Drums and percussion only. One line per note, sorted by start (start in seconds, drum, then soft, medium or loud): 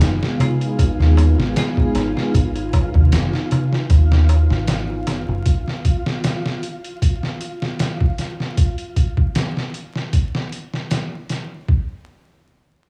0.01 snare loud
0.01 closed hi-hat medium
0.01 darbuka tek medium
0.23 snare medium
0.40 closed hi-hat medium
0.40 darbuka tek medium
0.40 darbuka dum medium
0.60 closed hi-hat soft
0.60 darbuka tek soft
0.79 kick loud
0.79 closed hi-hat medium
0.79 darbuka tek soft
1.00 snare soft
1.00 darbuka tek soft
1.17 closed hi-hat medium
1.17 darbuka tek medium
1.38 snare soft
1.38 darbuka tek soft
1.56 snare loud
1.56 closed hi-hat medium
1.56 darbuka tek soft
1.77 kick medium
1.77 darbuka tek soft
1.95 snare soft
1.95 closed hi-hat medium
1.95 darbuka tek medium
2.17 snare soft
2.17 darbuka tek soft
2.34 kick loud
2.34 closed hi-hat medium
2.34 darbuka tek soft
2.56 closed hi-hat soft
2.56 darbuka tek soft
2.73 kick medium
2.73 closed hi-hat medium
2.73 darbuka tek loud
2.94 kick medium
2.94 darbuka tek soft
2.94 darbuka dum medium
3.12 snare loud
3.12 closed hi-hat medium
3.12 darbuka tek soft
3.33 snare soft
3.51 closed hi-hat medium
3.51 darbuka tek medium
3.51 darbuka dum medium
3.73 snare soft
3.73 darbuka tek soft
3.90 kick loud
3.90 closed hi-hat medium
3.90 darbuka tek medium
4.11 snare medium
4.11 darbuka tek soft
4.29 closed hi-hat medium
4.29 darbuka tek medium
4.50 snare soft
4.50 darbuka tek soft
4.67 snare loud
4.67 closed hi-hat medium
4.67 darbuka tek medium
4.90 darbuka tek soft
5.07 snare soft
5.07 closed hi-hat medium
5.07 darbuka tek medium
5.29 darbuka tek soft
5.46 kick loud
5.46 closed hi-hat medium
5.68 snare soft
5.85 kick medium
5.85 closed hi-hat medium
6.06 snare medium
6.24 snare loud
6.24 closed hi-hat medium
6.46 snare soft
6.63 closed hi-hat medium
6.84 closed hi-hat soft
7.02 kick medium
7.02 closed hi-hat medium
7.23 snare soft
7.41 closed hi-hat medium
7.62 snare soft
7.79 snare loud
7.79 closed hi-hat medium
8.01 kick medium
8.18 snare soft
8.18 closed hi-hat medium
8.40 snare soft
8.57 kick loud
8.57 closed hi-hat medium
8.78 closed hi-hat soft
8.96 kick medium
8.96 closed hi-hat medium
9.17 kick medium
9.35 snare loud
9.35 closed hi-hat medium
9.57 snare soft
9.74 closed hi-hat medium
9.96 snare soft
10.13 kick medium
10.13 closed hi-hat medium
10.35 snare soft
10.52 closed hi-hat medium
10.74 snare soft
10.91 snare medium
10.91 closed hi-hat medium
11.29 snare soft
11.29 closed hi-hat medium
11.68 kick loud